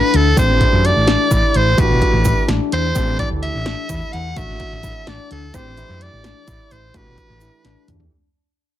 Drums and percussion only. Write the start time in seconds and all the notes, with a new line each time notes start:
0.14 closed hi-hat
0.37 kick, closed hi-hat, shaker
0.61 kick, closed hi-hat
0.85 closed hi-hat
1.08 snare, closed hi-hat
1.31 kick, closed hi-hat, shaker
1.54 closed hi-hat
1.78 kick, closed hi-hat, shaker
2.02 kick, closed hi-hat
2.25 kick, closed hi-hat, shaker
2.49 snare, closed hi-hat
2.72 closed hi-hat
2.95 kick, closed hi-hat, shaker
3.19 kick, closed hi-hat
3.43 closed hi-hat
3.66 snare, closed hi-hat
3.89 kick, closed hi-hat, shaker
4.13 closed hi-hat
4.36 kick, closed hi-hat, shaker
4.60 kick, snare, closed hi-hat
4.83 kick, closed hi-hat, shaker
5.07 snare, closed hi-hat
5.31 closed hi-hat
5.54 kick, closed hi-hat, shaker
5.77 closed hi-hat, shaker
6.01 closed hi-hat
6.24 snare, closed hi-hat, shaker
6.48 kick, closed hi-hat, shaker
6.71 closed hi-hat, shaker
6.94 kick, closed hi-hat, shaker
7.17 kick, snare, closed hi-hat, shaker
7.41 closed hi-hat, shaker
7.65 snare, closed hi-hat
7.88 closed hi-hat, mid tom, shaker
8.00 floor tom